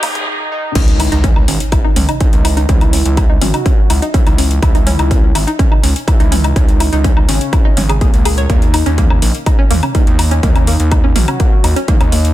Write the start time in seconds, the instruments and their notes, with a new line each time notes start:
Already playing: synth drone C#3, analog synth pad D#3 A#3 C#4 F#4, riser
0.03 analog synth bass D#2, synth arpeggio sound A#3, analog synth lead D#4, kick, mid tom, open hi-hat, low woodblock
0.15 kick, closed hi-hat
0.27 analog synth lead D#4
0.51 analog synth lead D#4
0.75 analog synth bass C#2, synth arpeggio sound C#4 C#5, kick, closed hi-hat, crash, impact
0.88 closed hi-hat
0.99 synth arpeggio sound E4 E5, open hi-hat, low woodblock
1.12 analog synth bass C#2, synth arpeggio sound D#4 D#5, closed hi-hat
1.24 synth arpeggio sound C#4 C#5, kick, closed hi-hat, mid tom
1.36 synth arpeggio sound D#4 D#5, low woodblock
1.48 analog synth bass G#1, synth arpeggio sound C#4 C#5, open hi-hat
1.60 closed hi-hat
1.72 synth arpeggio sound E4 E5, kick, closed hi-hat, low woodblock
1.84 synth arpeggio sound D#4 D#5
1.96 analog synth bass C#2, synth arpeggio sound C#4 C#5, mid tom, open hi-hat
2.09 synth arpeggio sound D#4 D#5, closed hi-hat, low woodblock
2.20 synth arpeggio sound C#4 C#5, analog synth lead D#4, kick, closed hi-hat
2.33 analog synth bass C#2, closed hi-hat
2.45 synth arpeggio sound E4 E5, open hi-hat, low woodblock
2.57 synth arpeggio sound D#4 D#5, closed hi-hat
2.69 analog synth bass C#2, synth arpeggio sound C#4 C#5, analog synth lead E4, kick, closed hi-hat, mid tom
2.81 synth arpeggio sound D#4 D#5, closed hi-hat, low woodblock
2.93 synth arpeggio sound C#4 C#5, open hi-hat
3.05 analog synth bass C#2, closed hi-hat
3.17 synth arpeggio sound E4 E5, kick, closed hi-hat, low woodblock
3.30 synth arpeggio sound D#4 D#5
3.41 analog synth bass G#1, synth arpeggio sound C#4 C#5, analog synth lead F#4, mid tom, open hi-hat
3.54 synth arpeggio sound D#4 D#5, closed hi-hat, low woodblock
3.66 synth arpeggio sound C#4 C#5, kick, closed hi-hat
3.90 analog synth bass C#2, synth arpeggio sound E4 E5, open hi-hat, low woodblock
4.02 synth arpeggio sound D#4 D#5, closed hi-hat
4.14 synth arpeggio sound C#4 C#5, analog synth lead E4, kick, closed hi-hat, mid tom
4.26 analog synth bass C#2, synth arpeggio sound D#4 D#5, closed hi-hat, low woodblock
4.38 synth arpeggio sound C#4 C#5, open hi-hat
4.51 closed hi-hat
4.62 analog synth bass C#2, analog synth lead E4, synth arpeggio sound E4 E5, kick, closed hi-hat, low woodblock
4.75 synth arpeggio sound D#4 D#5, closed hi-hat
4.87 synth arpeggio sound C#4 C#5, mid tom, open hi-hat
4.99 analog synth bass C#2, synth arpeggio sound D#4 D#5, closed hi-hat, low woodblock
5.11 synth arpeggio sound C#4 C#5, kick, closed hi-hat
5.35 analog synth bass G#1, synth arpeggio sound E4 E5, open hi-hat, low woodblock
5.47 synth arpeggio sound D#4 D#5, closed hi-hat
5.59 synth arpeggio sound C#4 C#5, kick, closed hi-hat, mid tom
5.71 synth arpeggio sound D#4 D#5, low woodblock
5.83 analog synth bass C#2, synth arpeggio sound C#4 C#5, open hi-hat
5.96 closed hi-hat
6.07 synth arpeggio sound E4 E5, analog synth lead E4, kick, closed hi-hat, low woodblock
6.20 analog synth bass C#2, synth arpeggio sound D#4 D#5, closed hi-hat
6.32 synth arpeggio sound C#4 C#5, mid tom, open hi-hat
6.44 synth arpeggio sound D#4 D#5, closed hi-hat, low woodblock
6.56 analog synth bass C#2, synth arpeggio sound C#4 C#5, analog synth lead D#4, kick, closed hi-hat
6.69 closed hi-hat
6.80 synth arpeggio sound E4 E5, open hi-hat, low woodblock
6.92 analog synth bass C#2, synth arpeggio sound D#4 D#5, closed hi-hat
7.04 synth arpeggio sound C#4 C#5, kick, closed hi-hat, mid tom
7.17 synth arpeggio sound D#4 D#5, low woodblock
7.29 analog synth bass G#1, synth arpeggio sound C#4 C#5, analog synth lead C#4, open hi-hat
7.41 closed hi-hat
7.53 synth arpeggio sound E4 E5, kick, closed hi-hat, low woodblock
7.65 synth arpeggio sound D#4 D#5
7.77 analog synth bass G#1, synth arpeggio sound C#4 C#5, mid tom, open hi-hat
7.89 synth arpeggio sound G#4 G#5, closed hi-hat, low woodblock
8.01 analog synth lead A#3, synth arpeggio sound G#4 G#5, kick, closed hi-hat
8.14 analog synth bass C#2, closed hi-hat
8.25 synth arpeggio sound G#4 G#5, open hi-hat, low woodblock
8.38 synth arpeggio sound C#5 C#6, closed hi-hat
8.50 analog synth bass D#2, synth arpeggio sound A#3 A#4, analog synth lead D#4, kick, closed hi-hat
8.62 closed hi-hat
8.74 synth arpeggio sound D#4 D#5, open hi-hat, low woodblock
8.86 analog synth bass D#2, synth arpeggio sound C#4 C#5, closed hi-hat
8.98 synth arpeggio sound A#3 A#4, kick, closed hi-hat, mid tom
9.10 synth arpeggio sound C#4 C#5, low woodblock
9.22 analog synth bass A#1, synth arpeggio sound A#3 A#4, open hi-hat
9.35 closed hi-hat
9.46 synth arpeggio sound D#4 D#5, kick, closed hi-hat, low woodblock
9.59 synth arpeggio sound C#4 C#5
9.71 analog synth bass D#2, synth arpeggio sound A#3 A#4, mid tom, open hi-hat
9.83 synth arpeggio sound C#4 C#5, closed hi-hat, low woodblock
9.95 synth arpeggio sound A#3 A#4, analog synth lead D#4, kick, closed hi-hat
10.07 analog synth bass D#2, closed hi-hat
10.19 synth arpeggio sound D#4 D#5, open hi-hat, low woodblock
10.31 synth arpeggio sound C#4 C#5, closed hi-hat
10.43 analog synth bass D#2, synth arpeggio sound A#3 A#4, analog synth lead D#4, kick, closed hi-hat, mid tom
10.56 synth arpeggio sound C#4 C#5, closed hi-hat, low woodblock
10.67 synth arpeggio sound A#3 A#4, open hi-hat
10.80 analog synth bass D#2, closed hi-hat
10.92 synth arpeggio sound D#4 D#5, kick, closed hi-hat, low woodblock
11.04 synth arpeggio sound C#4 C#5
11.16 analog synth bass A#1, synth arpeggio sound A#3 A#4, analog synth lead F#4, mid tom, open hi-hat
11.28 synth arpeggio sound C#4 C#5, closed hi-hat, low woodblock
11.40 synth arpeggio sound A#3 A#4, kick, closed hi-hat
11.64 analog synth bass D#2, synth arpeggio sound D#4 D#5, open hi-hat, low woodblock
11.76 synth arpeggio sound C#4 C#5, closed hi-hat
11.88 synth arpeggio sound A#3 A#4, analog synth lead D#4, kick, closed hi-hat, mid tom
12.01 analog synth bass D#2, synth arpeggio sound C#4 C#5, closed hi-hat, low woodblock
12.12 synth arpeggio sound A#3 A#4, open hi-hat
12.25 closed hi-hat